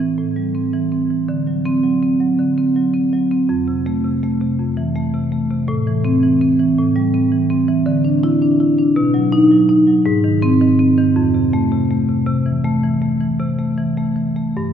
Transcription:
Already playing: A2 C4
0.00 E3
0.18 A2
0.36 G3
0.55 C4
0.73 E3
0.92 C4
1.10 E3
1.29 D3
1.47 F#3
1.66 C4
1.83 F#3
2.02 C4
2.20 F#3
2.39 D3
2.58 C4
2.76 F#3
2.94 C4
3.13 F#3
3.31 C4
3.49 F2
3.68 C3
3.86 A3
4.04 C3
4.23 A3
4.41 C3
4.59 F2
4.77 E3
4.96 A3
5.14 C3
5.32 A3
5.51 C3
5.68 A2
5.87 E3
6.05 C4
6.23 E3
6.41 C4
6.60 E3
6.78 A2
6.96 G3
7.14 C4
7.32 E3
7.50 C4
7.68 E3
7.86 D3
8.05 D4
8.23 E4
8.42 D4
8.60 E4
8.78 D4
8.96 B2
9.14 F#3
9.32 D#4
9.51 F#3
9.69 D#4
9.87 F#3
10.06 G#2
10.24 D#3
10.42 C4
10.61 D#3
10.79 C4
10.98 D#3
11.16 F2
11.34 C3
11.53 A3
11.72 C3
11.91 A3
12.09 C3
12.26 C3
12.46 E3
12.64 A3
12.83 E3
13.02 A3
13.21 E3
13.39 C3
13.59 A3
13.78 E3
13.97 A3
14.16 E3
14.36 A3
14.57 G2

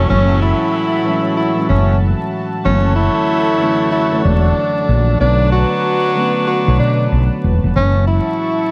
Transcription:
Already playing: A2 E3 F#3 G#3 C#4 F#4 E5 A5
0.06 F#1 A2 E3 F#3 G#3 C#4 B5
0.11 C#4
0.42 E4
1.04 A2 E3 F#3 G#3
1.08 C#4
1.37 E4
1.55 A2 E3 F#3 G#3
1.59 C#4
1.69 F#1 C#4
2.64 F#1 F#2 D3 E3 F#3 A3 C#4 F#4 A4 C#5
2.68 B3
2.74 C#4
2.96 E4
3.58 F#2 D3 E3 F#3 A3
3.63 C#4
3.92 E4
4.10 F#2 D3 E3 F#3 A3
4.15 C#5
4.24 E1 D4
4.89 A#1
5.18 B1 D3 F#3 A3 B3 D4 B4
5.23 C4
5.29 C#5
5.52 F#4
6.15 D3 F#3 A3 B3
6.19 C#4
6.47 F#4
6.65 B1 D3 F#3 A3 B3
6.69 C#5
6.79 B2 D4
7.12 B1
7.44 E1
7.64 F1
7.74 F#1 A2 E3 F#3 G#3 C#4 F#4 E5 A5 C#6
7.78 C#4
8.07 E4

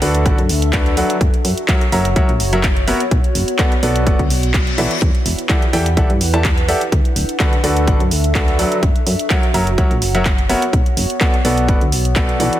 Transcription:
Already playing: D4 A4 E5
0.02 D2 D3 F#4 A4 B4 D5 F#5, open hi-hat
0.15 closed hi-hat
0.26 A1 D3 F#4 A4 B4 D5 F#5, kick, closed hi-hat
0.38 F#2, closed hi-hat
0.49 D2, open hi-hat
0.62 closed hi-hat
0.73 D3 F#4 A4 B4 D5 F#5, kick, clap, closed hi-hat
0.86 closed hi-hat
0.97 F#3 F#4 A4 B4 D5 F#5, open hi-hat
1.10 closed hi-hat
1.21 F#1 F#4, kick, closed hi-hat
1.34 closed hi-hat
1.45 F#2, open hi-hat
1.58 F#5, closed hi-hat
1.62 C#5
1.68 F#3 F#4 A#4 C#5 E5 F#5, kick, clap, closed hi-hat
1.81 closed hi-hat
1.92 F#1 F#3 F#4 A#4 C#5 E5 A#5, open hi-hat
2.05 closed hi-hat
2.16 C#2 F#3 F#4 A#4 C#5 E5 F#5, kick, closed hi-hat
2.29 A#1, closed hi-hat
2.40 F#1, open hi-hat
2.53 F#3 F#4 A#4 C#5 E5 F#5, closed hi-hat
2.63 kick, clap, closed hi-hat
2.77 closed hi-hat
2.88 B3 F#4 A#4 C#5 E5 F#5, open hi-hat
3.00 closed hi-hat
3.11 B1 B3, kick, closed hi-hat
3.24 closed hi-hat
3.35 F#1, open hi-hat
3.48 closed hi-hat
3.59 B3 F#4 A4 B4 D5 F#5, kick, clap, closed hi-hat
3.72 closed hi-hat
3.83 B1 B3 F#4 A4 B4 D5 F#5, open hi-hat
3.96 closed hi-hat
4.07 F#1 B3 F#4 A4 B4 D5 F#5, kick, closed hi-hat, reverse cymbal
4.19 D2, kick, closed hi-hat
4.30 B1, open hi-hat
4.43 closed hi-hat
4.54 kick, clap, closed hi-hat
4.67 closed hi-hat
4.78 B1 E3 F#4 A4 B4 D5 E5, open hi-hat
4.91 closed hi-hat
5.02 E2 E4, kick, closed hi-hat
5.12 B4, closed hi-hat
5.21 F#5
5.26 E1, open hi-hat
5.39 closed hi-hat
5.49 E3 G4 A4 D5 E5 F#5, kick, clap, closed hi-hat
5.62 closed hi-hat
5.73 E2 E3 G4 A4 D5 E5 G5, open hi-hat
5.86 closed hi-hat
5.97 B1 E3 G4 A4 D5 E5 F#5, kick, closed hi-hat
6.10 G2, closed hi-hat
6.21 E2, open hi-hat
6.34 E3 G4 A4 D5 E5 A5, closed hi-hat
6.44 kick, clap, closed hi-hat
6.58 closed hi-hat
6.68 G4 A4 D5 E5 F#5, open hi-hat
6.81 closed hi-hat
6.92 D2 D4, kick, closed hi-hat
7.05 closed hi-hat
7.16 D1, open hi-hat
7.29 closed hi-hat
7.40 D3 F#4 A4 B4 D5 F#5, kick, clap, closed hi-hat
7.53 closed hi-hat
7.64 D2 D3 F#4 A4 B4 D5 F#5, open hi-hat
7.77 E5, closed hi-hat
7.87 A1 D3 F#4 A4 B4 D5 F#5, kick, closed hi-hat
8.00 F#2, closed hi-hat
8.11 D2, open hi-hat
8.24 closed hi-hat
8.35 D3 F#4 A4 B4 D5 F#5, kick, clap, closed hi-hat
8.48 closed hi-hat
8.59 F#3 F#4 A4 B4 D5 F#5, open hi-hat
8.72 closed hi-hat
8.83 F#1 F#4, kick, closed hi-hat
8.96 closed hi-hat
9.07 F#2, open hi-hat
9.19 closed hi-hat
9.30 F#3 F#4 A#4 C#5 E5 F#5, kick, clap, closed hi-hat
9.43 closed hi-hat
9.50 C#5
9.54 F#1 F#3 F#4 A#4 C#5 E5 A#5, open hi-hat
9.67 F#5, closed hi-hat
9.78 C#2 F#3 F#4 A#4 C#5 E5 F#5, kick, closed hi-hat
9.91 A#1, closed hi-hat
10.02 F#1, open hi-hat
10.15 F#3 F#4 A#4 C#5 E5 F#5, closed hi-hat
10.25 kick, clap, closed hi-hat
10.38 closed hi-hat
10.49 B3 F#4 A#4 C#5 E5 F#5, open hi-hat
10.62 closed hi-hat
10.73 B1 B3, kick, closed hi-hat
10.86 closed hi-hat
10.97 F#1, open hi-hat
11.10 closed hi-hat
11.21 B3 F#4 A4 B4 D5 F#5, kick, clap, closed hi-hat
11.34 closed hi-hat
11.45 B1 B3 F#4 A4 B4 D5 F#5, open hi-hat
11.58 closed hi-hat
11.68 F#1 B3 F#4 A4 B4 D5 F#5, kick, closed hi-hat
11.81 D2, closed hi-hat
11.92 B1, open hi-hat
12.05 closed hi-hat
12.16 B3 F#4 A4 B4 D5 F#5, kick, clap, closed hi-hat
12.29 closed hi-hat
12.40 B1 E3 F#4 A4 B4 D5 F#5, open hi-hat
12.53 closed hi-hat

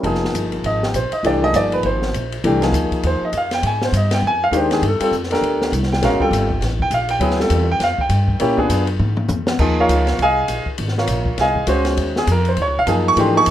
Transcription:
0.03 F1 F3 A#3 D#4 G#4, ride
0.15 snare
0.25 snare
0.33 G1, hi-hat pedal, ride
0.52 ride
0.64 G#1 D#5, ride
0.83 G4, snare
0.94 A#1 C5, hi-hat pedal, ride
1.12 D#5, muted upright bass stroke, ride
1.23 C2 E3 A3 D4 G4 D5, ride
1.42 F3 A#3 D#4 G#4 D#5
1.54 G1 D5, hi-hat pedal, ride
1.72 B4, ride
1.83 G#1 C5, ride
2.02 snare
2.14 A#1, hi-hat pedal, ride
2.32 ride
2.44 C2 E3 A3 D4 G4, ride
2.61 F3 A#3 D#4 G#4, snare, ride
2.72 D2, hi-hat pedal, ride
2.92 muted upright bass stroke, kick, ride
3.03 D#2 C5, ride
3.22 D#5, muted upright bass stroke
3.32 F2, hi-hat pedal, ride
3.37 F5
3.51 G5, snare, ride
3.63 G#2 G#5, ride
3.82 C5, snare
3.93 G2, hi-hat pedal, ride
3.97 D#5
4.11 G5, snare, ride
4.22 F2
4.27 G#5
4.44 F5
4.51 D#2 D#3 G#3 D4 G4, hi-hat pedal, ride
4.57 C5
4.71 G#4, snare, ride
4.82 G2, ride
4.87 A4
5.00 G3 C4 F4 A4, muted upright bass stroke, ride
5.12 F2, hi-hat pedal
5.23 snare
5.30 D4 G4 A4 A#4, snare, ride
5.41 D2, ride
5.62 snare
5.72 C2, hi-hat pedal, ride
5.83 snare
5.92 G5, snare
6.01 A#1 G#3 C#4 F#4 A#4 F5, snare, ride
6.11 G1
6.20 F1 G3 C4 F4 A4 G5, kick
6.31 G1, hi-hat pedal, ride
6.50 kick
6.61 A1, snare, ride
6.80 G5, kick
6.90 A#1 F5, hi-hat pedal, ride
7.09 G5, ride
7.20 D2 F#3 B3 E4 G#4, ride
7.30 snare
7.39 G3 C4 F4 A4, snare
7.50 E2, hi-hat pedal, ride
7.72 G5
7.80 F2, snare, ride
7.84 F5
7.98 G5, muted upright bass stroke, kick
8.09 G2, hi-hat pedal, ride
8.28 kick
8.40 A#2 A#3 C#4 E4 G4, ride
8.57 B3 D4 F4 G#4, kick
8.69 F#2, hi-hat pedal, ride
8.87 ride
8.99 G#2, mid tom
9.17 mid tom
9.28 F2, hi-hat pedal, mid tom
9.47 snare
9.59 D#2 F3 A#3 D#4 G#4, kick, crash
9.80 F4 A#4 C#5 F5
9.89 C#2, hi-hat pedal, ride
10.07 snare, ride
10.19 C2 G#5, ride
10.23 G#4 D#5 F5
10.48 A#1, hi-hat pedal, ride
10.66 muted upright bass stroke, kick
10.78 G#1, ride
10.88 snare
10.98 F4 A#4 C#5 F5, snare
11.07 A#1, hi-hat pedal, ride
11.26 kick
11.38 C2 G#4 D#5 F5 G#5, snare, ride
11.55 kick
11.67 C#2 G#3 C#4 F#4 C5, hi-hat pedal, ride
11.85 snare, ride
11.97 D#2, ride
12.16 G#4, snare
12.27 F2, hi-hat pedal, ride
12.32 A#4
12.45 C5, ride
12.57 D#2, ride
12.62 C#5
12.67 C#2
12.77 A#1 F5
12.86 F#2 F3 A#3 D#4 G#4, hi-hat pedal, ride
12.91 G#5
13.08 C#6
13.16 G#2 E3 A3 D4 G4, ride
13.20 C6
13.34 F3 A#3 D#4 G#4 C#6
13.46 F#2, hi-hat pedal, ride

